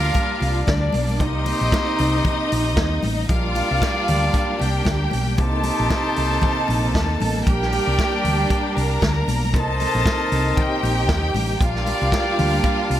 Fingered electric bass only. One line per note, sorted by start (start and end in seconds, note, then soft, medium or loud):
0.41 0.62 C2 loud
0.68 0.88 D2 loud
0.94 1.20 B1 loud
1.20 1.52 C2 loud
1.61 1.70 A#1 medium
2.00 2.19 C2 loud
2.52 2.77 A#1 loud
2.77 2.97 D#2 loud
3.04 3.24 A1 loud
3.29 3.61 A#1 loud
3.71 3.80 C2 medium
4.09 4.28 D2 medium
4.61 4.81 C2 medium
4.87 5.06 D2 loud
5.13 5.39 B1 loud
5.39 5.70 C2 loud
5.80 5.88 A#1 medium
6.17 6.37 C2 medium
6.69 6.95 A#1 medium
6.95 7.15 D#2 loud
7.22 7.41 A1 loud
7.47 7.78 A#1 loud
7.87 7.96 C2 medium
8.24 8.44 D2 medium
8.77 8.96 C2 loud
9.02 9.22 D2 loud
9.28 9.54 B1 loud
9.54 9.85 C2 loud
9.95 10.03 A#1 medium
10.32 10.51 C2 loud
10.83 11.09 A#1 medium
11.09 11.29 D#2 medium
11.35 11.54 A1 loud
11.61 11.92 A#1 loud
12.02 12.10 C2 loud
12.39 12.58 D2 medium
12.90 13.00 C2 loud